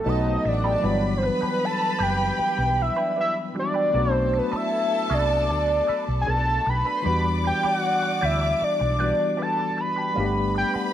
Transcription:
Already playing: analog synth lead A4
0.04 fingered electric bass B1, tine electric piano F#3 A3 B3 D#4 F#4, clean electric guitar D#4 A4 B4, violin section A4 A5
0.09 analog synth lead D#5
0.15 violin section B3 B4
0.24 violin section C4 C5
0.34 violin section D#4 D#5
0.43 fingered electric bass A1, violin section E4 E5, muted clean electric guitar stroke
0.48 analog synth lead D5
0.52 violin section F#4 F#5
0.63 clean electric guitar D#4 A4 B4, violin section G4 G5
0.73 violin section A4 A5
0.81 fingered electric bass G1, tine electric piano E3 G3 B3, clean electric guitar D4 G4, violin section B4 B5
0.85 tine electric piano F#3 D4, clean electric guitar B4
1.17 analog synth lead C5
1.22 analog synth lead B4, muted clean electric guitar stroke
1.41 clean electric guitar D4 G4 B4, muted fingered electric bass stroke
1.65 analog synth lead A5
1.80 muted clean electric guitar stroke
1.99 fingered electric bass F#1, clean electric guitar D4 G4 B4, analog synth lead G5
2.19 muted clean electric guitar stroke
2.38 muted clean electric guitar stroke, muted fingered electric bass stroke
2.58 fingered electric bass B1, muted clean electric guitar stroke
2.82 analog synth lead E5
2.96 clean electric guitar D4 G4 B4
3.16 clean electric guitar D4 G4 B4
3.20 analog synth lead E5
3.54 tine electric piano E3 G3 B3 D4 F#4, muted clean electric guitar stroke
3.59 analog synth lead D5
3.74 clean electric guitar D4 G4 B4
3.92 fingered electric bass B1, tine electric piano F#3 A3 B3, clean electric guitar D4 A4 B4, violin section A4 A5
3.96 tine electric piano D4 F#4
4.12 analog synth lead C5
4.32 muted clean electric guitar stroke
4.38 analog synth lead B4
4.52 clean electric guitar D4 A4 B4, muted fingered electric bass stroke
4.56 analog synth lead E5
4.91 muted clean electric guitar stroke
5.10 fingered electric bass C2, clean electric guitar D4 A4 B4
5.14 analog synth lead D5
5.29 muted clean electric guitar stroke
5.49 fingered electric bass D2, muted clean electric guitar stroke
5.68 muted clean electric guitar stroke
5.87 clean electric guitar D4 A4 B4, muted fingered electric bass stroke
6.07 fingered electric bass B1, muted clean electric guitar stroke
6.21 analog synth lead G#5
6.27 fingered electric bass B1, clean electric guitar D4 A4 B4, analog synth lead A5
6.37 violin section D4 D5
6.47 violin section E4 E5
6.57 violin section F#4 F#5
6.66 fingered electric bass B1, violin section G4 G5, analog synth lead B5, muted clean electric guitar stroke
6.77 violin section A4 A5
6.85 clean electric guitar D4 A4 B4, violin section B4 B5
6.96 violin section C5 C6
7.02 fingered electric bass E2, tine electric piano E3 G3 B3, clean electric guitar D4 G4 B4, violin section D5 D6
7.07 tine electric piano D4 F#4
7.44 analog synth lead G5, muted clean electric guitar stroke
7.63 clean electric guitar D4 G4 B4, analog synth lead F#5, muted fingered electric bass stroke
8.03 muted clean electric guitar stroke
8.21 fingered electric bass D2, clean electric guitar D4 G4 B4, analog synth lead E5
8.41 muted clean electric guitar stroke
8.61 analog synth lead D5, muted clean electric guitar stroke, muted fingered electric bass stroke
8.80 fingered electric bass B1, muted clean electric guitar stroke
8.99 tine electric piano E3 G3 B3 D4 F#4, clean electric guitar D4 G4 B4
9.19 muted clean electric guitar stroke
9.37 clean electric guitar D4 G4 B4
9.42 analog synth lead A5
9.77 analog synth lead B5, muted clean electric guitar stroke
9.96 clean electric guitar D4 G4 B4
10.14 fingered electric bass G1, tine electric piano G3 A3 B3, clean electric guitar D4 F#4 B4, violin section B4 B5
10.18 tine electric piano D4 G4
10.55 analog synth lead G5, muted clean electric guitar stroke
10.74 clean electric guitar D4 F#4 B4, muted fingered electric bass stroke

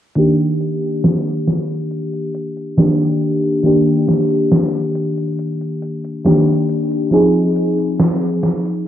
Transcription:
0.16 fm electric piano D#3 A#3 D4 G4, closed hi-hat
0.39 closed hi-hat
0.61 closed hi-hat
0.83 closed hi-hat
1.04 snare, closed hi-hat
1.26 closed hi-hat
1.47 snare, closed hi-hat
1.70 closed hi-hat
1.91 closed hi-hat
2.13 closed hi-hat
2.34 closed hi-hat
2.57 closed hi-hat
2.77 fm electric piano D#3 A#3 D4 G4, snare, closed hi-hat
3.00 closed hi-hat
3.21 closed hi-hat
3.44 closed hi-hat
3.63 fm electric piano D#3 A#3 D4 G4, closed hi-hat
3.87 closed hi-hat
4.08 snare, closed hi-hat
4.30 closed hi-hat
4.52 snare, closed hi-hat
4.74 closed hi-hat
4.95 closed hi-hat
5.18 closed hi-hat
5.39 closed hi-hat
5.61 closed hi-hat
5.82 closed hi-hat
6.04 closed hi-hat
6.25 fm electric piano D#3 A#3 D4 G4, snare, closed hi-hat
6.48 closed hi-hat
6.69 closed hi-hat
6.91 closed hi-hat
7.11 fm electric piano F3 C4 D#4 G#4, closed hi-hat
7.35 closed hi-hat
7.56 closed hi-hat
7.78 closed hi-hat
8.00 snare, closed hi-hat
8.22 closed hi-hat
8.43 snare, closed hi-hat
8.65 closed hi-hat

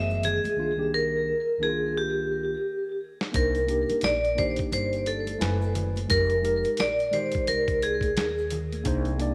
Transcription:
Already playing: upright bass F#1, tine electric piano E3 A3 B3 G#4, vibraphone E5
0.10 shaker
0.23 vibraphone G#4, closed hi-hat, low conga, shaker
0.44 muted upright bass stroke, closed hi-hat, high conga, shaker
0.56 tine electric piano C2 D#3 A#3 D4 F4
0.76 tine electric piano C2 D#3 A#3 D4 G4
0.94 vibraphone A#4
1.59 tine electric piano C2 D#3 A#3 D4 E4
1.63 vibraphone G#4
1.69 tine electric piano F4
1.97 vibraphone G4
3.21 snare
3.32 upright bass C2, tine electric piano A#3 D4 D#4 C5, kick, closed hi-hat, shaker
3.36 vibraphone A#4
3.55 closed hi-hat, shaker
3.67 tine electric piano A#3 D4 D#4 G4, closed hi-hat, shaker
3.89 muted upright bass stroke, closed hi-hat, shaker
4.01 upright bass A#1, vibraphone D5, snare, closed hi-hat, shaker
4.24 closed hi-hat, shaker
4.35 tine electric piano A#3 D4 D#4 G4, vibraphone C5, kick, closed hi-hat, low conga, shaker
4.56 muted upright bass stroke, kick, closed hi-hat, shaker
4.72 upright bass G1, vibraphone C5, closed hi-hat, shaker
4.93 closed hi-hat, shaker
5.06 vibraphone A4, closed hi-hat, shaker
5.27 closed hi-hat, high conga, shaker
5.39 upright bass F#1, tine electric piano A3 E4 B4 G#5, snare, closed hi-hat, shaker
5.62 shaker
5.75 closed hi-hat, low conga, shaker
5.96 closed hi-hat, high conga, shaker
6.07 upright bass F1, tine electric piano G#3 D#4 G4 A#4, vibraphone A#4, kick, closed hi-hat, shaker
6.30 closed hi-hat, shaker
6.42 tine electric piano G#3 D#4 G4 A#4, closed hi-hat, shaker
6.64 muted upright bass stroke, closed hi-hat, shaker
6.77 upright bass A#1, vibraphone D5, snare, closed hi-hat, shaker
6.99 closed hi-hat, shaker
7.11 tine electric piano G#3 D#4 G4 C5, vibraphone C5, closed hi-hat, low conga, shaker
7.32 kick, closed hi-hat, shaker
7.47 upright bass C2, vibraphone A#4, closed hi-hat, shaker
7.68 kick, closed hi-hat, shaker
7.82 vibraphone G#4, closed hi-hat, shaker
8.01 kick, closed hi-hat, high conga, shaker
8.17 upright bass D#2, snare, closed hi-hat, shaker
8.38 shaker
8.50 closed hi-hat, low conga, shaker
8.72 closed hi-hat, high conga, shaker
8.84 upright bass C2, tine electric piano A#3 D4 D#4 C5, kick, closed hi-hat, shaker
9.05 closed hi-hat, shaker
9.18 tine electric piano A#3 D4 D#4 D5, closed hi-hat, shaker

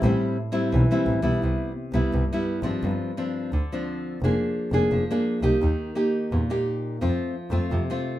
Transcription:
0.03 double bass A1, nylon-string guitar A2 G3 C4 E4
0.52 nylon-string guitar G3 C4 E4
0.72 double bass B1, nylon-string guitar E3
0.91 nylon-string guitar G3 C4 E4
1.07 double bass A1
1.22 double bass B1, nylon-string guitar G3 B3 E4
1.43 double bass C2, nylon-string guitar C3
1.93 double bass C2, nylon-string guitar G3 B3 E4
2.13 double bass C2, nylon-string guitar G2
2.33 nylon-string guitar G3 B3 E4
2.63 double bass G#1, nylon-string guitar F3 C4 D4
2.83 double bass G1, nylon-string guitar G2
3.17 nylon-string guitar F3 C4 D4
3.53 double bass D2, nylon-string guitar D3
3.72 nylon-string guitar F3 C4 D4
4.22 double bass F1, nylon-string guitar F3 A#3 D4 G#4
4.72 double bass F1, nylon-string guitar A#3 D4 G#4
4.92 double bass F1, nylon-string guitar F3
5.11 nylon-string guitar A#3 D4 G#4
5.42 double bass C2, nylon-string guitar A#3 D#4 G4
5.62 double bass D#2, nylon-string guitar D#3
5.95 nylon-string guitar A#3 D#4 G4
6.32 double bass E2, nylon-string guitar A#2
6.50 nylon-string guitar A#3 D#4 G4
7.01 double bass F2, nylon-string guitar F3 A3 C4 F4
7.51 double bass F2, nylon-string guitar A3 C4 F4
7.71 double bass F2, nylon-string guitar C3
7.90 nylon-string guitar A3 C4 F4

